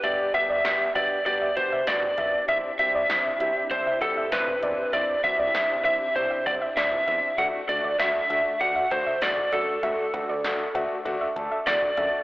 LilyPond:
<<
  \new Staff \with { instrumentName = "Synth pluck" } { \time 4/4 \key c \lydian \tempo 4 = 98 e''16 r8 d''8 r16 e''16 r8 e''16 r16 e''16 d''16 r16 e''16 r16 | e''16 r8 d''8 r16 e''16 r8 e''16 r16 e''16 r8 d''16 r16 | e''16 r8 d''8 r16 e''16 r8 e''16 r16 e''16 d''16 r16 e''16 r16 | e''16 r8 d''8 r16 e''16 r8 e''16 r16 e''16 r8 d''16 r16 |
e''16 r8 d''8 r16 e''16 r8 e''16 r16 e''16 d''16 r16 e''16 r16 | }
  \new Staff \with { instrumentName = "Lead electric guitar" } { \time 4/4 \key c \lydian d''8 e''4 d''8 d''8 c''8 d''4 | e''8 e''4. c''8 a'8 b'4 | d''8 e''4 e''8 c''8 d''8 e''4 | fis''8 d''8 e''4 fis''8 c''8 d''8 a'8~ |
a'2. d''4 | }
  \new Staff \with { instrumentName = "Grand piano" } { \time 4/4 \key c \lydian <b d' g'>8 <b d' g'>8 <b d' g'>8 <b d' g'>8 <b d' g'>8 <b d' g'>8 <b d' fis'>8 <b d' e'>8 | <c' d' e'>8 <c' d' g'>8 <c' d' e'>8 <c' d' g'>8 <c' d' e'>8 <c' d' g'>8 <c' d' e'>8 <c' d' e'>8 | <c' d' e'>8 <c' d' fis'>8 <c' d' e'>8 <c' d' e'>8 <c' d' e'>8 <c' d' e'>8 <c' d' e'>8 <c' d' e'>8 | <a d' fis'>8 <a d' fis'>8 <a d' fis'>8 <a d' fis'>8 <a d' fis'>8 <a d' fis'>8 <a d' fis'>8 <a d' fis'>8 |
<a d' fis'>8 <a d' fis'>8 <a d' fis'>8 <a d' fis'>8 <a d' fis'>8 <a d' a'>8 <a d' fis'>8 <a d' fis'>8 | }
  \new Staff \with { instrumentName = "String machine" } { \time 4/4 \key c \lydian <b, d' g'>1 | <c c' e' g'>1~ | <c c' e' g'>1 | <a fis'>1~ |
<a fis'>1 | }
  \new Staff \with { instrumentName = "Analog synth bass" } { \clef bass \time 4/4 \key c \lydian g,,16 r16 g,,16 g,,16 g,,16 r16 g,,16 r16 g,,16 r16 g,,16 r16 a,,16 r16 b,,16 r16 | c,16 r16 c,16 c,16 c,16 r16 c,16 r16 c,16 r16 c,16 r16 d,16 r16 e,16 r16 | c,16 r16 c,16 c,16 c,16 r16 c,16 r16 c,16 r16 c,16 r16 d,16 r16 e,16 r16 | d,16 r16 d,16 d,16 d,16 r16 d,16 r16 d,16 r16 d,16 r16 e,16 r16 fis,16 r16 |
d,16 r16 d,16 d,16 d,16 r16 d,16 r16 d,16 r16 d,16 r16 e,16 r16 fis,16 r16 | }
  \new DrumStaff \with { instrumentName = "Drums" } \drummode { \time 4/4 <hh bd>8 <cb hh bd>8 <hh sn>8 <cb hh>8 <hh bd>8 <hh bd>8 <hh sn>16 toml16 <hh bd toml>8 | <hh bd>8 hh8 <hh sn>8 hh8 <hh bd>8 <cb hh bd>8 <hh sn>16 toml16 hh8 | <hh bd>8 <hh bd>8 <hh sn>8 hh8 <hh bd>8 <cb hh bd>8 <hh sn>16 toml16 <hh bd>8 | <hh bd>8 hh8 <hh sn>8 hh8 <hh bd>8 <cb hh bd>8 <hh sn>16 toml16 hh8 |
<hh bd>8 <cb hh bd>8 <hh sn>8 <cb hh>8 <hh bd>8 <hh bd>8 <hh sn>16 toml16 <hh bd toml>8 | }
>>